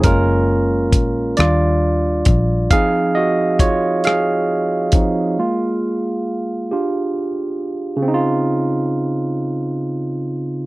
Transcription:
<<
  \new Staff \with { instrumentName = "Tine electric piano" } { \time 6/8 \key des \major \tempo 4. = 45 << { <des' bes'>4. d''4 r8 | <aes' f''>8 <ges' ees''>8 <f' des''>8 <aes' f''>4.~ | <aes' f''>2 r4 | <des c' ees' f'>2. | } \\ { <aes bes f'>4. <g d' f'>8 r4 | <f c' ees'>8 r2 <f c' ees'>8 | <aes bes f'>4. <d' f' g'>8 r4 | r2. | } >> }
  \new Staff \with { instrumentName = "Fingered electric bass" } { \clef bass \time 6/8 \key des \major ges,,4 bes,,8 ees,4 bes,,8 | r2. | r2. | r2. | }
  \new DrumStaff \with { instrumentName = "Drums" } \drummode { \time 6/8 <hh bd>4 <hh bd>8 <hh ss>4 <hh bd>8 | <hh bd>4 <hh bd>8 <hh ss>4 <hh bd>8 | r4. r4. | r4. r4. | }
>>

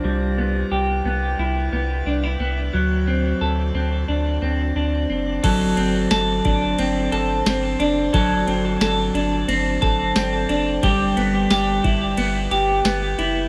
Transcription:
<<
  \new Staff \with { instrumentName = "Clean electric guitar" } { \time 4/4 \key d \mixolydian \tempo 4 = 89 g8 b8 g'8 b8 e'8 b8 d'16 e'16 b8 | fis8 c'8 a'8 c'8 d'8 c'8 d'8 c'8 | <fis a'>8 c'8 a'8 d'8 c'8 a'8 c'8 d'8 | <fis a'>8 c'8 a'8 d'8 c'8 a'8 c'8 d'8 |
<g g'>8 b8 g'8 e'8 b8 g'8 b8 e'8 | }
  \new Staff \with { instrumentName = "Analog synth bass" } { \clef bass \time 4/4 \key d \mixolydian c,4 c,8 c,8 c,8 c,8 c,8 c,8 | d,4 d,8 d,8 d,8 d,8 d,8 fis,,8 | g,,8 g,,8 g,,8 g,,8 g,,8 g,,8 g,,8 fis,,8 | g,,8 g,,8 g,,8 g,,8 g,,8 g,,8 g,,8 fis,,8 |
g,,8 g,,8 g,,8 g,,8 g,,8 g,,8 g,,8 fis,,8 | }
  \new DrumStaff \with { instrumentName = "Drums" } \drummode { \time 4/4 r4 r4 r4 r4 | r4 r4 r4 r4 | <cymc bd cymr>8 cymr8 <cymr sn tamb>8 <bd cymr>8 cymr8 cymr8 <cymr sn tamb>8 cymr8 | <bd cymr>8 cymr8 <cymr sn tamb>8 cymr8 cymr8 <bd cymr>8 <cymr sn tamb>8 cymr8 |
<bd cymr>8 cymr8 <cymr sn tamb>8 <bd cymr>8 cymr8 cymr8 <cymr sn tamb>8 cymr8 | }
>>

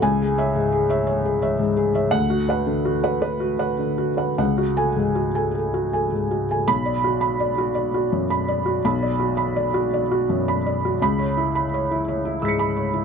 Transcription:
<<
  \new Staff \with { instrumentName = "Felt piano" } { \time 6/8 \key b \dorian \tempo 4. = 56 << { gis''8 r2 r8 | fis''8 r2 r8 | r8 gis''16 r2 r16 | b''8 r2 r8 |
r2. | b''8 r4. <e''' b''' cis''''>4 | } \\ { r16 gis'16 <cis'' e''>16 gis,16 gis'16 <cis'' e''>16 cis''16 gis'16 <cis'' e''>16 gis,16 gis'16 <cis'' e''>16 | r16 fis'16 <b' fis''>16 d16 fis'16 <b' fis''>16 b'16 fis'16 <b' fis''>16 d16 fis'16 <b' fis''>16 | fis''16 fis'16 a'16 gis,16 fis'16 <a' gis''>16 a'16 fis'16 <a' gis''>16 gis,16 fis'16 <a' gis''>16 | r16 d''16 fis'16 b''16 d''16 fis'16 d''16 fis'16 fis,16 b''16 d''16 fis'16 |
b''16 d''16 fis'16 b''16 d''16 fis'16 d''16 fis'16 fis,16 b''16 d''16 fis'16 | r16 cis''16 e'16 b''16 cis''16 e'16 cis''16 e'16 gis,16 b''16 cis''16 e'16 | } >> }
  \new Staff \with { instrumentName = "Felt piano" } { \clef bass \time 6/8 \key b \dorian cis,2. | d,2. | cis,2. | b,,2. |
b,,2. | cis,2. | }
>>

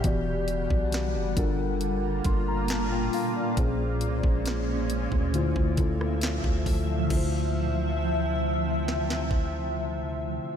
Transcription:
<<
  \new Staff \with { instrumentName = "Synth keys" } { \time 4/4 \key d \minor \tempo 4 = 68 << { r2 r8 c'''16 bes''16 a''16 g''16 f''16 d''16~ | d''16 r2. r8. | r1 | } \\ { <e b fis' g' d''>4. <g d' f' a' bes'>4 r4. | <bes, bes des' aes' c''>4. r8 <d a e' f' c''>8 <d a e' f' a'>4~ <d a e' f' a'>16 r16 | <d a e' f' c''>1 | } >> }
  \new Staff \with { instrumentName = "Ambient pad" } { \clef bass \time 4/4 \key d \minor << { <g fis''>4. <bes f'>2~ <bes f'>8 | <aes des'>2 <f e''>2 | <c f e''>1 | } \\ { d4. bes,2~ bes,8 | bes,1 | r1 | } >> }
  \new Staff \with { instrumentName = "808-style bass" } { \clef bass \time 4/4 \key d \minor e,,8. b,,8 fis,,16 g,,4 g,,4 r8 | bes,,8 c,16 bes,,4 d,8 d,4 d,16 d,8 | d,1 | }
  \new DrumStaff \with { instrumentName = "Drums" } \drummode { \time 4/4 <hh bd>8 hh16 bd16 <hh sn>8 <hh bd>8 hh8 <hh bd>8 <hh sn>8 hho8 | <hh bd>8 hh16 bd16 <hh sn>8 hh16 bd16 hh16 bd16 <hh bd>16 ss16 <hh sn>16 bd16 <hho bd>8 | <cymc bd>4 r4 sn16 sn16 bd8 r4 | }
>>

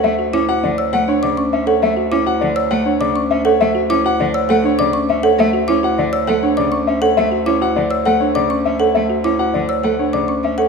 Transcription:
<<
  \new Staff \with { instrumentName = "Xylophone" } { \time 3/4 \key d \major \tempo 4 = 101 r8 d'''16 r8 e'''16 fis''16 r16 d'''16 cis'''16 r16 fis''16 | r8 d'''16 r8 e'''16 fis''16 r16 d'''16 cis'''16 r16 fis''16 | r8 d'''16 r8 e'''16 fis''16 r16 d'''16 cis'''16 r16 fis''16 | r8 d'''16 r8 e'''16 fis''16 r16 d'''16 cis'''16 r16 fis''16 |
r8 d'''16 r8 e'''16 fis''16 r16 d'''16 cis'''16 r16 fis''16 | r8 d'''16 r8 e'''16 fis''16 r16 d'''16 cis'''16 r16 fis''16 | }
  \new Staff \with { instrumentName = "Grand piano" } { \time 3/4 \key d \major e''16 r16 cis''16 fis''16 d''16 r16 fis''16 cis''16 d''16 r16 e''16 cis''16 | e''16 r16 cis''16 fis''16 d''16 r16 fis''16 cis''16 d''16 r16 e''16 cis''16 | e''16 r16 cis''16 fis''16 d''16 r16 fis''16 cis''16 d''16 r16 e''16 cis''16 | e''16 r16 cis''16 fis''16 d''16 r16 fis''16 cis''16 d''16 r16 e''16 cis''16 |
e''16 r16 cis''16 fis''16 d''16 r16 fis''16 cis''16 d''16 r16 e''16 cis''16 | e''16 r16 cis''16 fis''16 d''16 r16 fis''16 cis''16 d''16 r16 e''16 cis''16 | }
  \new Staff \with { instrumentName = "Marimba" } { \time 3/4 \key d \major r16 fis'16 e'16 fis'16 r16 cis''16 r16 d'16 r16 cis'16 r16 a'16 | r16 fis'16 e'16 fis'16 r16 cis''16 r16 d'16 r16 cis'16 r16 a'16 | r16 fis'16 e'16 fis'16 r16 cis''16 a'16 d'16 r16 cis'16 r16 a'16 | r16 fis'16 e'16 fis'16 r16 cis''16 a'16 d'16 r16 cis'16 r16 a'16 |
r16 fis'16 e'16 fis'16 r16 cis''16 a'16 d'16 r16 cis'16 r16 a'16 | r16 fis'16 e'16 fis'16 r16 cis''16 a'16 d'16 r16 cis'16 r16 a'16 | }
  \new Staff \with { instrumentName = "Cello" } { \time 3/4 \key d \major a16 r16 cis'16 r16 d16 r16 a16 r16 cis16 r16 cis'16 r16 | a16 r16 cis'16 r16 d16 r16 a16 r16 cis16 r16 cis'16 r16 | a16 r16 cis'16 r16 d16 r16 a16 r16 cis16 r16 cis'16 r16 | a16 r16 cis'16 r16 d16 r16 a16 r16 cis16 r16 cis'16 r16 |
a16 r16 cis'16 r16 d16 r16 a16 r16 cis16 r16 cis'16 r16 | a16 r16 cis'16 r16 d16 r16 a16 r16 cis16 r16 cis'16 r16 | }
  \new Staff \with { instrumentName = "Bass clarinet" } { \clef bass \time 3/4 \key d \major d,2.~ | d,2.~ | d,2.~ | d,2.~ |
d,2.~ | d,2. | }
>>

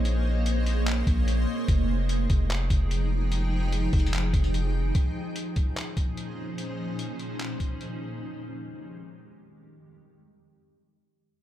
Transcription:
<<
  \new Staff \with { instrumentName = "Ambient pad" } { \time 4/4 \key bes \dorian \tempo 4 = 147 <bes aes' c'' des'' ees''>1 | <f ees' aes' g''>1~ | <f ees' aes' g''>1 | <bes, f des' ees' aes' c''>1~ |
<bes, f des' ees' aes' c''>1 | <f, ees aes g'>1~ | <f, ees aes g'>1 | }
  \new Staff \with { instrumentName = "808-style bass" } { \clef bass \time 4/4 \key bes \dorian bes,,2~ bes,,8 bes,,4 r8 | f,,4. f,,4 f,,4.~ | f,,4. f,,4 f,,4. | r1 |
r1 | r1 | r1 | }
  \new DrumStaff \with { instrumentName = "Drums" } \drummode { \time 4/4 hh4 hh8 hh8 <hc hh>8 <hh bd>8 hh4 | <hh bd>4 hh8 <hh bd>8 <hc hh>8 <hh bd>8 hh4 | hh4 \tuplet 3/2 { hh16 r16 r16 <hh hho bd>16 hh16 hh16 } <hc hh>8 <hh bd>16 hh16 hh4 | <hh bd>4 hh8 <hh bd>8 <hc hh>8 <hh bd>8 hh4 |
hh4 hh8 hh8 <hc hh>8 <hh bd>8 hh4 | r4 r4 r4 r4 | r4 r4 r4 r4 | }
>>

